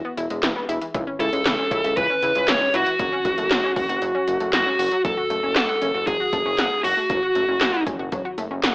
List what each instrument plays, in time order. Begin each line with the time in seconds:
0.05 synth arpeggio sound B3
0.17 analog synth bass E1, synth arpeggio sound E4, closed hi-hat
0.30 analog synth bass E1, synth arpeggio sound G#3, closed hi-hat
0.43 analog synth bass E1, synth arpeggio sound E3, snare, clap, closed hi-hat
0.56 synth arpeggio sound B3
0.69 analog synth bass E1, synth arpeggio sound E4, closed hi-hat
0.81 synth arpeggio sound E3, closed hi-hat
0.94 analog synth bass C#2, synth arpeggio sound E3, kick, closed hi-hat
1.07 synth arpeggio sound C#4
1.20 analog synth bass C#2, synth arpeggio sound E4, lead electric guitar A4, closed hi-hat
1.33 analog synth bass C#2, synth arpeggio sound G#3, closed hi-hat
1.45 analog synth bass C#2, synth arpeggio sound E3, snare, clap, closed hi-hat
1.58 synth arpeggio sound C#4
1.71 analog synth bass C#2, synth arpeggio sound E4, kick, closed hi-hat
1.84 analog synth bass C#2, synth arpeggio sound E5, closed hi-hat
1.97 analog synth bass C#2, synth arpeggio sound E3, lead electric guitar B4, kick, closed hi-hat
2.10 synth arpeggio sound C#4
2.22 analog synth bass C#2, synth arpeggio sound E4, closed hi-hat
2.35 analog synth bass C#2, synth arpeggio sound G#3, closed hi-hat
2.48 analog synth bass C#2, synth arpeggio sound E3, lead electric guitar C#5, snare, clap, closed hi-hat
2.61 synth arpeggio sound C#4
2.74 analog synth bass C#2, synth arpeggio sound E4, lead electric guitar F#4, closed hi-hat
2.86 synth arpeggio sound E3, closed hi-hat
2.99 analog synth bass F#1, synth arpeggio sound F#3, kick, closed hi-hat
3.12 synth arpeggio sound C#4
3.25 analog synth bass F#1, synth arpeggio sound F#4, kick, closed hi-hat
3.38 analog synth bass F#1, synth arpeggio sound A3, closed hi-hat
3.51 analog synth bass F#1, synth arpeggio sound F#3, snare, clap, closed hi-hat
3.64 synth arpeggio sound C#4
3.76 analog synth bass F#1, synth arpeggio sound F#4, kick, open hi-hat
3.89 analog synth bass F#1, synth arpeggio sound F#5, closed hi-hat
4.02 analog synth bass F#1, synth arpeggio sound F#3, closed hi-hat
4.15 synth arpeggio sound C#4
4.28 analog synth bass F#1, synth arpeggio sound F#4, closed hi-hat
4.40 analog synth bass F#1, synth arpeggio sound A3, closed hi-hat
4.53 analog synth bass F#1, synth arpeggio sound F#3, lead electric guitar F#4, snare, clap, closed hi-hat
4.66 synth arpeggio sound C#4
4.79 analog synth bass F#1, synth arpeggio sound F#4, open hi-hat
4.91 synth arpeggio sound F#3, closed hi-hat
5.05 analog synth bass F#1, synth arpeggio sound F#3, lead electric guitar A4, kick, closed hi-hat
5.17 synth arpeggio sound F#4
5.30 analog synth bass F#1, synth arpeggio sound A3, closed hi-hat
5.43 analog synth bass F#1, synth arpeggio sound C#4
5.56 analog synth bass F#1, lead electric guitar A4, synth arpeggio sound F#5, snare, clap, closed hi-hat
5.69 synth arpeggio sound F#5
5.81 analog synth bass F#1, synth arpeggio sound C#4, closed hi-hat
5.94 analog synth bass F#1, synth arpeggio sound F#4
6.07 analog synth bass F#1, synth arpeggio sound F#3, lead electric guitar G#4, kick, closed hi-hat
6.20 synth arpeggio sound F#4
6.33 analog synth bass F#1, synth arpeggio sound A3, kick, closed hi-hat
6.46 analog synth bass F#1, synth arpeggio sound C#4
6.58 analog synth bass F#1, synth arpeggio sound F#5, snare, clap, closed hi-hat
6.84 analog synth bass F#1, lead electric guitar F#4, synth arpeggio sound F#4, open hi-hat
6.97 synth arpeggio sound A3
7.10 analog synth bass F#1, synth arpeggio sound F#3, kick, closed hi-hat
7.23 synth arpeggio sound F#4
7.35 analog synth bass F#1, synth arpeggio sound A3, closed hi-hat
7.48 analog synth bass F#1, synth arpeggio sound C#4
7.61 analog synth bass F#1, synth arpeggio sound F#5, snare, clap, closed hi-hat
7.74 synth arpeggio sound F#5
7.87 analog synth bass F#1, synth arpeggio sound C#4, kick, closed hi-hat
7.99 analog synth bass F#1, synth arpeggio sound F#4
8.12 analog synth bass F#1, synth arpeggio sound F#3, kick, closed hi-hat
8.25 synth arpeggio sound F#4
8.38 analog synth bass F#1, synth arpeggio sound A3, closed hi-hat
8.51 analog synth bass F#1, synth arpeggio sound C#4
8.63 analog synth bass F#1, synth arpeggio sound F#5, snare, clap, closed hi-hat